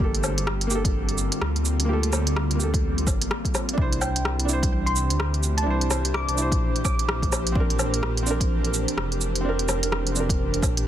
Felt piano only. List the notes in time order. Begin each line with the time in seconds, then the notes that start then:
Already playing: A#3
0.00 G4 A4
0.67 A#3 G4
0.75 A4
1.85 A#3
1.89 G4 A4
2.55 A#3 G4
2.63 A4
3.73 D4
3.78 E4 C5
4.45 D4
4.49 E4
4.53 C5
5.63 D4 E4
5.70 C5
6.34 D4 E4
6.42 C5
7.52 C4 D4
7.60 A#4
8.23 C4 D4
8.30 A#4
9.41 C4 D4
9.49 A#4
10.12 C4 D4
10.20 A#4